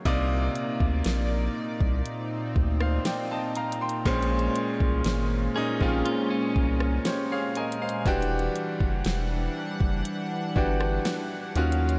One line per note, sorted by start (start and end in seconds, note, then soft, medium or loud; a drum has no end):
0.05 0.49 C2 loud
0.05 8.02 A#2 medium
0.05 1.28 C3 loud
0.05 2.04 A#3 medium
0.05 1.28 A#3 loud
0.05 4.02 D#4 medium
0.05 1.29 D#4 loud
0.05 4.01 D5 medium
0.05 1.29 D5 loud
0.05 kick loud
0.05 closed hi-hat medium
0.55 closed hi-hat medium
0.80 1.02 D2 medium
0.80 kick loud
1.04 1.49 A#1 medium
1.04 snare loud
1.04 closed hi-hat medium
1.81 2.02 C2 medium
1.81 kick loud
2.05 4.03 C4 medium
2.05 closed hi-hat medium
2.56 2.99 D2 medium
2.56 kick loud
2.81 3.05 C5 medium
2.81 3.05 F5 medium
2.81 cross-stick loud
3.05 3.30 D5 medium
3.05 3.30 G5 medium
3.05 snare loud
3.05 closed hi-hat medium
3.31 3.55 D#5 medium
3.31 3.55 A5 medium
3.55 3.80 F5 medium
3.55 3.80 A#5 medium
3.55 closed hi-hat medium
3.72 closed hi-hat medium
3.81 4.29 G5 medium
3.81 4.29 C6 medium
3.89 closed hi-hat medium
4.05 4.49 A#1 loud
4.05 4.97 A#2 loud
4.05 8.02 G#3 medium
4.05 4.98 G#3 loud
4.05 8.02 A#3 medium
4.05 8.02 C#4 medium
4.05 4.98 C#4 loud
4.05 4.98 C5 loud
4.05 kick loud
4.05 closed hi-hat soft
4.22 closed hi-hat soft
4.39 closed hi-hat soft
4.56 closed hi-hat medium
4.80 5.02 C2 medium
4.80 kick loud
5.04 5.49 G#1 medium
5.04 snare loud
5.04 closed hi-hat medium
5.56 5.71 A#2 medium
5.56 5.71 G#3 medium
5.56 5.71 C#4 medium
5.56 5.72 D#4 loud
5.56 5.81 G#4 medium
5.81 6.02 A#1 medium
5.81 7.03 A#2 medium
5.81 7.03 G#3 medium
5.81 5.88 C4 medium
5.81 7.04 F4 loud
5.81 6.04 G4 medium
5.81 kick loud
5.88 7.07 C#4 medium
6.05 6.29 F4 medium
6.05 closed hi-hat medium
6.30 7.77 C#4 medium
6.56 6.99 C2 medium
6.56 kick medium
6.80 cross-stick loud
7.05 7.30 G4 medium
7.05 7.30 C5 medium
7.05 7.29 C#5 medium
7.05 snare loud
7.05 closed hi-hat medium
7.32 7.55 G#4 medium
7.32 7.55 C#5 medium
7.32 7.55 F5 medium
7.55 7.80 A#4 medium
7.55 7.80 D#5 medium
7.55 8.03 G#5 medium
7.55 closed hi-hat medium
7.72 closed hi-hat medium
7.82 8.29 C5 medium
7.82 8.29 F5 medium
7.89 closed hi-hat medium
8.05 8.49 E1 loud
8.05 9.28 E3 loud
8.05 11.52 E3 medium
8.05 11.52 G3 medium
8.05 11.52 D4 medium
8.05 9.28 D4 loud
8.05 9.29 F#4 loud
8.05 9.29 G4 loud
8.05 11.52 F#5 medium
8.05 kick loud
8.05 closed hi-hat medium
8.22 closed hi-hat soft
8.39 closed hi-hat soft
8.56 closed hi-hat medium
8.80 9.02 F#1 medium
8.80 kick medium
9.05 9.49 E1 loud
9.05 snare loud
9.05 closed hi-hat medium
9.80 10.02 F#1 loud
9.80 kick loud
10.05 closed hi-hat medium
10.55 10.99 G1 loud
10.55 11.47 E3 medium
10.55 11.48 D4 medium
10.55 11.48 F#4 medium
10.55 11.48 G4 medium
10.55 kick medium
10.80 cross-stick loud
11.05 snare loud
11.05 closed hi-hat medium
11.55 11.99 D#2 loud
11.55 11.99 D#3 medium
11.55 11.99 F#3 medium
11.55 11.99 C#4 medium
11.55 11.99 F4 medium
11.55 11.99 F#4 medium
11.55 11.99 F5 medium
11.55 closed hi-hat medium
11.72 closed hi-hat medium
11.89 closed hi-hat medium